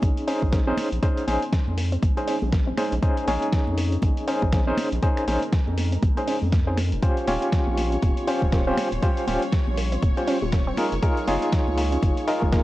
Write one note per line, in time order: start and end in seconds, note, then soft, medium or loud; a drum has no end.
0.00 0.13 A#1 medium
0.00 6.74 G#3 medium
0.00 0.25 C#4 medium
0.00 6.74 C#4 medium
0.00 0.25 D#4 medium
0.00 6.74 D#4 medium
0.00 0.25 G#4 medium
0.00 0.25 C#5 loud
0.00 2.99 C6 medium
0.00 kick loud
0.00 closed hi-hat medium
0.00 high conga medium
0.17 closed hi-hat soft
0.28 0.64 C#4 medium
0.28 0.37 C#4 loud
0.28 0.64 D#4 medium
0.28 0.64 G#4 medium
0.28 0.64 C5 medium
0.28 open hi-hat loud
0.42 0.73 A#1 medium
0.42 0.52 G#3 medium
0.42 kick medium
0.42 high conga medium
0.53 0.66 A#3 loud
0.53 kick loud
0.53 snare loud
0.53 closed hi-hat medium
0.67 0.74 C4 loud
0.67 0.88 C#4 medium
0.67 0.88 D#4 medium
0.67 0.88 G#4 medium
0.67 0.88 C5 loud
0.77 finger snap medium
0.77 open hi-hat loud
0.77 high conga medium
0.92 0.99 A#1 medium
0.92 closed hi-hat soft
1.03 1.08 G#3 medium
1.03 1.25 C#4 loud
1.03 1.25 D#4 medium
1.03 1.25 G#4 medium
1.03 1.25 C5 loud
1.03 kick loud
1.03 closed hi-hat medium
1.17 closed hi-hat medium
1.28 1.38 A#1 loud
1.28 1.43 C#4 medium
1.28 1.43 D#4 medium
1.28 1.43 G#4 medium
1.28 1.43 C5 medium
1.28 open hi-hat loud
1.28 high conga medium
1.42 closed hi-hat soft
1.53 kick loud
1.53 snare loud
1.53 closed hi-hat medium
1.67 1.98 F2 medium
1.67 high conga medium
1.78 1.91 A#3 medium
1.78 open hi-hat loud
1.92 1.96 C4 medium
1.92 closed hi-hat medium
2.03 2.13 A#1 medium
2.03 kick loud
2.03 closed hi-hat medium
2.03 high conga medium
2.17 2.38 C#4 medium
2.17 2.38 D#4 medium
2.17 2.38 G#4 medium
2.17 2.38 C5 loud
2.17 closed hi-hat soft
2.28 2.37 C#4 loud
2.28 open hi-hat loud
2.42 2.73 A#1 medium
2.42 2.52 G#3 medium
2.42 high conga medium
2.52 2.66 A#3 loud
2.52 kick loud
2.52 snare loud
2.52 closed hi-hat medium
2.67 2.74 C4 loud
2.78 2.93 C#4 medium
2.78 2.93 D#4 medium
2.78 2.93 G#4 medium
2.78 2.93 C5 loud
2.78 finger snap medium
2.78 open hi-hat loud
2.78 high conga loud
2.92 2.99 A#1 loud
2.92 closed hi-hat soft
3.03 3.08 G#3 medium
3.03 3.25 C#4 medium
3.03 3.25 D#4 medium
3.03 3.25 G#4 medium
3.03 6.74 A#4 medium
3.03 3.25 C5 loud
3.03 kick loud
3.03 closed hi-hat medium
3.17 closed hi-hat medium
3.28 3.38 A#1 loud
3.28 4.25 C#4 medium
3.28 4.25 D#4 medium
3.28 4.25 G#4 medium
3.28 4.25 C#5 loud
3.28 open hi-hat loud
3.28 high conga loud
3.42 closed hi-hat soft
3.52 kick loud
3.52 snare loud
3.52 closed hi-hat medium
3.67 3.98 F2 medium
3.67 high conga medium
3.77 3.91 A#3 medium
3.77 open hi-hat loud
3.92 3.96 C4 medium
3.92 closed hi-hat medium
4.02 4.13 A#1 medium
4.02 kick loud
4.02 closed hi-hat medium
4.02 high conga medium
4.17 closed hi-hat soft
4.27 4.37 C#4 loud
4.27 4.64 C#4 medium
4.27 4.64 D#4 medium
4.27 4.64 G#4 medium
4.27 4.64 C5 medium
4.27 open hi-hat loud
4.42 4.73 A#1 medium
4.42 4.52 G#3 medium
4.42 kick medium
4.42 high conga medium
4.52 4.66 A#3 loud
4.52 kick loud
4.52 snare loud
4.52 closed hi-hat medium
4.67 4.74 C4 loud
4.67 4.88 C#4 medium
4.67 4.88 D#4 medium
4.67 4.88 G#4 medium
4.67 4.88 C5 loud
4.77 finger snap medium
4.77 open hi-hat loud
4.77 high conga loud
4.92 4.99 A#1 loud
4.92 closed hi-hat soft
5.02 5.08 G#3 medium
5.02 5.25 C#4 loud
5.02 5.25 D#4 medium
5.02 5.25 G#4 medium
5.02 5.25 C5 loud
5.02 kick loud
5.02 closed hi-hat medium
5.17 finger snap medium
5.17 closed hi-hat soft
5.28 5.38 A#1 loud
5.28 5.43 C#4 medium
5.28 5.43 D#4 medium
5.28 5.43 G#4 medium
5.28 5.43 C5 medium
5.28 open hi-hat loud
5.28 high conga medium
5.42 closed hi-hat soft
5.53 kick loud
5.53 snare loud
5.53 closed hi-hat medium
5.67 5.98 F2 medium
5.67 high conga medium
5.78 5.91 A#3 medium
5.78 open hi-hat loud
5.92 5.96 C4 medium
5.92 closed hi-hat soft
6.03 6.13 A#1 medium
6.03 kick loud
6.03 closed hi-hat medium
6.03 high conga loud
6.17 6.38 C#4 medium
6.17 6.38 D#4 medium
6.17 6.38 G#4 medium
6.17 6.38 C5 medium
6.17 closed hi-hat soft
6.28 6.37 C#4 loud
6.28 open hi-hat loud
6.42 6.94 F2 medium
6.42 6.52 G#3 medium
6.42 high conga medium
6.52 6.66 A#3 loud
6.52 kick loud
6.52 snare loud
6.52 closed hi-hat medium
6.67 6.74 C4 loud
6.67 6.76 C#4 medium
6.67 6.76 D#4 medium
6.67 6.76 G#4 medium
6.67 6.76 C5 medium
6.77 10.74 G3 medium
6.77 10.74 C#4 medium
6.77 10.73 F4 medium
6.77 10.74 C6 medium
6.77 finger snap medium
6.77 open hi-hat loud
6.77 high conga loud
6.92 6.99 D#1 medium
6.92 closed hi-hat soft
7.03 7.08 G3 medium
7.03 7.25 C#4 loud
7.03 7.25 F4 medium
7.03 7.25 G4 medium
7.03 7.25 C5 loud
7.03 12.63 C#5 medium
7.03 kick loud
7.03 closed hi-hat medium
7.17 closed hi-hat soft
7.27 7.38 D#1 loud
7.27 8.25 C#4 medium
7.27 8.25 F4 medium
7.27 8.25 G4 medium
7.27 8.25 C#5 loud
7.27 open hi-hat loud
7.27 high conga medium
7.42 closed hi-hat soft
7.52 kick loud
7.52 snare loud
7.52 closed hi-hat medium
7.67 7.97 A#1 medium
7.67 high conga medium
7.78 7.91 A#3 medium
7.78 open hi-hat loud
7.92 7.96 C4 medium
7.92 closed hi-hat soft
8.03 8.13 D#1 medium
8.03 kick loud
8.03 closed hi-hat medium
8.03 high conga medium
8.17 closed hi-hat soft
8.27 8.64 C#4 medium
8.27 8.37 C#4 loud
8.27 8.64 F4 medium
8.27 8.64 G4 medium
8.27 8.64 C5 medium
8.27 open hi-hat loud
8.42 8.72 D#1 medium
8.42 8.52 G3 medium
8.42 kick medium
8.42 high conga medium
8.52 8.66 A#3 loud
8.52 kick loud
8.52 snare loud
8.52 closed hi-hat medium
8.67 8.74 C4 loud
8.67 8.88 C#4 medium
8.67 8.88 F4 medium
8.67 8.88 G4 medium
8.67 8.88 C5 loud
8.77 finger snap medium
8.77 open hi-hat loud
8.77 high conga loud
8.92 8.99 D#1 loud
8.92 closed hi-hat soft
9.03 9.08 G3 medium
9.03 9.25 C#4 loud
9.03 9.25 F4 medium
9.03 9.25 G4 medium
9.03 9.25 C5 loud
9.03 kick loud
9.03 closed hi-hat medium
9.17 closed hi-hat medium
9.27 9.38 D#1 loud
9.27 9.43 C#4 medium
9.27 9.43 F4 medium
9.27 9.43 G4 medium
9.27 9.43 C5 medium
9.27 open hi-hat loud
9.27 high conga medium
9.42 closed hi-hat soft
9.52 kick loud
9.52 snare loud
9.52 closed hi-hat medium
9.67 9.97 A#1 medium
9.67 high conga medium
9.77 9.91 A#3 medium
9.77 open hi-hat loud
9.92 9.96 C4 medium
9.92 closed hi-hat medium
10.02 10.13 D#1 medium
10.02 kick loud
10.02 closed hi-hat medium
10.02 high conga medium
10.17 10.38 C#4 medium
10.17 10.38 F4 medium
10.17 10.38 G4 medium
10.17 10.38 C5 loud
10.17 closed hi-hat soft
10.27 10.37 C#4 loud
10.27 open hi-hat loud
10.42 10.72 D#1 medium
10.42 10.52 G3 medium
10.42 high conga medium
10.52 10.66 A#3 loud
10.52 kick loud
10.52 snare loud
10.52 closed hi-hat medium
10.67 10.74 C4 loud
10.77 12.63 G#3 medium
10.77 10.93 D#4 medium
10.77 12.63 D#4 medium
10.77 10.93 F4 medium
10.77 12.63 F4 medium
10.77 10.93 G#4 medium
10.77 10.93 A#4 loud
10.77 12.63 A#4 medium
10.77 finger snap medium
10.77 open hi-hat loud
10.77 high conga medium
10.92 10.99 F#1 loud
10.92 closed hi-hat soft
11.02 11.08 G#3 medium
11.02 11.25 D#4 medium
11.02 11.25 F4 medium
11.02 11.25 G#4 medium
11.02 11.25 A#4 loud
11.02 kick loud
11.02 closed hi-hat medium
11.17 closed hi-hat medium
11.28 11.38 F#1 loud
11.28 12.25 D#4 medium
11.28 12.25 F4 medium
11.28 12.25 G#4 medium
11.28 12.25 C#5 loud
11.28 open hi-hat loud
11.28 high conga medium
11.42 closed hi-hat soft
11.52 kick loud
11.52 snare loud
11.52 closed hi-hat medium
11.67 11.98 C#2 medium
11.67 high conga medium
11.78 11.91 A#3 medium
11.78 open hi-hat loud
11.92 11.96 C#4 medium
11.92 closed hi-hat medium
12.02 12.13 F#1 medium
12.02 kick loud
12.02 closed hi-hat medium
12.02 high conga medium
12.17 closed hi-hat soft
12.28 12.37 D#4 loud
12.28 12.63 D#4 medium
12.28 12.63 F4 medium
12.28 12.63 G#4 medium
12.28 12.63 A#4 loud
12.28 open hi-hat loud
12.42 12.63 F#1 medium
12.42 12.52 G#3 medium
12.42 kick medium
12.42 high conga medium
12.52 12.63 A#3 loud
12.52 kick loud
12.52 snare loud
12.52 closed hi-hat medium